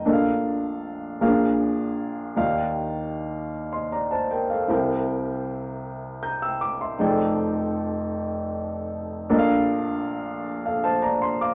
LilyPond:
\new Staff \with { instrumentName = "Upright piano" } { \time 6/8 \key bes \major \tempo 4. = 52 << { r2. | r4. r16 <ees'' c'''>16 <d'' bes''>16 <c'' a''>16 <bes' g''>16 <a' f''>16~ | <a' f''>16 r4. r16 <bes'' g'''>16 <g'' e'''>16 d'''16 <e'' c'''>16~ | <e'' c'''>16 r2 r8. |
r4. r16 <a' f''>16 <c'' a''>16 <d'' bes''>16 c'''16 <f'' d'''>16 | } \\ { <bes,, bes, d' a' bes' ees'' f''>4. <bes,, bes, des' d' aes' bes' f''>4. | <ees, ees ees' f' g' d'' f''>2. | <c, c e' bes' c'' g''>2. | <f,, f, ees' aes' a' d'' g''>2. |
<bes,, bes, d' a' bes' ees'' f''>2. | } >> }